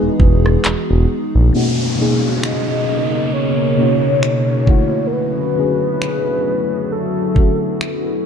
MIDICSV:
0, 0, Header, 1, 7, 480
1, 0, Start_track
1, 0, Key_signature, 5, "major"
1, 0, Tempo, 895522
1, 825, Time_signature, 4, 2, 24, 8
1, 4427, End_track
2, 0, Start_track
2, 0, Title_t, "Soft synth lead"
2, 0, Program_c, 0, 80
2, 0, Note_on_c, 0, 71, 93
2, 347, Note_off_c, 0, 71, 0
2, 1311, Note_on_c, 0, 75, 111
2, 1767, Note_off_c, 0, 75, 0
2, 1786, Note_on_c, 0, 73, 104
2, 2718, Note_on_c, 0, 70, 69
2, 2726, Note_off_c, 0, 73, 0
2, 2747, Note_on_c, 0, 71, 108
2, 2755, Note_off_c, 0, 70, 0
2, 3709, Note_on_c, 0, 69, 85
2, 3717, Note_off_c, 0, 71, 0
2, 4427, Note_off_c, 0, 69, 0
2, 4427, End_track
3, 0, Start_track
3, 0, Title_t, "FM electric piano"
3, 0, Program_c, 1, 5
3, 0, Control_c, 1, 64, 127
3, 0, Note_on_c, 1, 56, 85
3, 0, Note_on_c, 1, 59, 81
3, 0, Note_on_c, 1, 63, 80
3, 0, Note_on_c, 1, 68, 96
3, 748, Note_off_c, 1, 56, 0
3, 751, Note_off_c, 1, 59, 0
3, 755, Note_off_c, 1, 63, 0
3, 759, Note_off_c, 1, 68, 0
3, 818, Note_on_c, 1, 47, 78
3, 823, Note_on_c, 1, 58, 73
3, 829, Note_on_c, 1, 61, 76
3, 831, Control_c, 1, 64, 0
3, 834, Note_on_c, 1, 63, 73
3, 839, Note_on_c, 1, 66, 88
3, 935, Control_c, 1, 64, 127
3, 1043, Note_off_c, 1, 47, 0
3, 1046, Note_off_c, 1, 58, 0
3, 1049, Note_off_c, 1, 61, 0
3, 1051, Note_off_c, 1, 63, 0
3, 1054, Note_off_c, 1, 66, 0
3, 1059, Note_on_c, 1, 47, 81
3, 1064, Note_on_c, 1, 58, 68
3, 1070, Note_on_c, 1, 61, 71
3, 1075, Note_on_c, 1, 63, 71
3, 1081, Note_on_c, 1, 68, 84
3, 1948, Note_off_c, 1, 47, 0
3, 1950, Note_off_c, 1, 58, 0
3, 1953, Note_off_c, 1, 61, 0
3, 1956, Note_off_c, 1, 63, 0
3, 1959, Note_off_c, 1, 68, 0
3, 2019, Note_on_c, 1, 47, 63
3, 2024, Note_on_c, 1, 58, 55
3, 2029, Note_on_c, 1, 61, 56
3, 2035, Note_on_c, 1, 63, 53
3, 2040, Note_on_c, 1, 66, 69
3, 2497, Note_on_c, 1, 50, 88
3, 2502, Note_off_c, 1, 47, 0
3, 2502, Note_off_c, 1, 61, 0
3, 2502, Note_on_c, 1, 57, 77
3, 2504, Note_off_c, 1, 58, 0
3, 2508, Note_on_c, 1, 61, 79
3, 2510, Note_off_c, 1, 63, 0
3, 2512, Note_off_c, 1, 66, 0
3, 2512, Control_c, 1, 64, 0
3, 2513, Note_on_c, 1, 64, 81
3, 2518, Note_on_c, 1, 66, 97
3, 2593, Control_c, 1, 64, 127
3, 2944, Note_off_c, 1, 50, 0
3, 2947, Note_off_c, 1, 57, 0
3, 2949, Note_off_c, 1, 61, 0
3, 2952, Note_off_c, 1, 64, 0
3, 2955, Note_off_c, 1, 66, 0
3, 2978, Note_on_c, 1, 50, 62
3, 2984, Note_on_c, 1, 57, 59
3, 2989, Note_on_c, 1, 61, 64
3, 2995, Note_on_c, 1, 64, 57
3, 2999, Note_on_c, 1, 68, 74
3, 3867, Note_off_c, 1, 50, 0
3, 3870, Note_off_c, 1, 57, 0
3, 3873, Note_off_c, 1, 61, 0
3, 3876, Note_off_c, 1, 64, 0
3, 3878, Note_off_c, 1, 68, 0
3, 3938, Note_on_c, 1, 50, 60
3, 3943, Note_on_c, 1, 57, 57
3, 3949, Note_on_c, 1, 61, 57
3, 3954, Note_on_c, 1, 64, 54
3, 3960, Note_on_c, 1, 66, 69
3, 4427, Note_off_c, 1, 50, 0
3, 4427, Note_off_c, 1, 57, 0
3, 4427, Note_off_c, 1, 61, 0
3, 4427, Note_off_c, 1, 64, 0
3, 4427, Note_off_c, 1, 66, 0
3, 4427, End_track
4, 0, Start_track
4, 0, Title_t, "Ambient pad"
4, 0, Program_c, 2, 92
4, 0, Note_on_c, 2, 52, 88
4, 0, Note_on_c, 2, 56, 77
4, 0, Note_on_c, 2, 63, 75
4, 0, Note_on_c, 2, 66, 89
4, 805, Note_off_c, 2, 52, 0
4, 805, Note_off_c, 2, 63, 0
4, 805, Note_off_c, 2, 66, 0
4, 806, Note_off_c, 2, 56, 0
4, 825, Note_on_c, 2, 47, 73
4, 825, Note_on_c, 2, 58, 72
4, 826, Note_on_c, 2, 63, 90
4, 827, Note_on_c, 2, 49, 78
4, 2488, Note_off_c, 2, 47, 0
4, 2488, Note_off_c, 2, 58, 0
4, 2489, Note_off_c, 2, 49, 0
4, 2489, Note_off_c, 2, 63, 0
4, 2505, Note_on_c, 2, 50, 82
4, 2506, Note_on_c, 2, 54, 69
4, 2507, Note_on_c, 2, 61, 72
4, 2507, Note_on_c, 2, 64, 87
4, 3456, Note_off_c, 2, 61, 0
4, 3467, Note_on_c, 2, 59, 73
4, 4427, Note_off_c, 2, 50, 0
4, 4427, Note_off_c, 2, 54, 0
4, 4427, Note_off_c, 2, 59, 0
4, 4427, Note_off_c, 2, 64, 0
4, 4427, End_track
5, 0, Start_track
5, 0, Title_t, "Analog synth bass"
5, 0, Program_c, 3, 38
5, 7, Note_on_c, 3, 28, 49
5, 46, Note_off_c, 3, 28, 0
5, 106, Note_on_c, 3, 28, 89
5, 303, Note_off_c, 3, 28, 0
5, 347, Note_on_c, 3, 28, 47
5, 402, Note_off_c, 3, 28, 0
5, 485, Note_on_c, 3, 28, 98
5, 568, Note_off_c, 3, 28, 0
5, 724, Note_on_c, 3, 34, 89
5, 807, Note_off_c, 3, 34, 0
5, 4427, End_track
6, 0, Start_track
6, 0, Title_t, "Downlifter"
6, 0, Program_c, 4, 103
6, 825, Note_on_c, 4, 60, 77
6, 4427, Note_off_c, 4, 60, 0
6, 4427, End_track
7, 0, Start_track
7, 0, Title_t, "Drums"
7, 105, Note_on_c, 9, 36, 93
7, 159, Note_off_c, 9, 36, 0
7, 245, Note_on_c, 9, 37, 94
7, 299, Note_off_c, 9, 37, 0
7, 345, Note_on_c, 9, 42, 76
7, 348, Note_on_c, 9, 39, 108
7, 398, Note_off_c, 9, 42, 0
7, 401, Note_off_c, 9, 39, 0
7, 1305, Note_on_c, 9, 26, 110
7, 1358, Note_off_c, 9, 26, 0
7, 2266, Note_on_c, 9, 26, 94
7, 2320, Note_off_c, 9, 26, 0
7, 2505, Note_on_c, 9, 36, 95
7, 2558, Note_off_c, 9, 36, 0
7, 3225, Note_on_c, 9, 26, 102
7, 3279, Note_off_c, 9, 26, 0
7, 3945, Note_on_c, 9, 36, 80
7, 3998, Note_off_c, 9, 36, 0
7, 4186, Note_on_c, 9, 26, 107
7, 4240, Note_off_c, 9, 26, 0
7, 4427, End_track
0, 0, End_of_file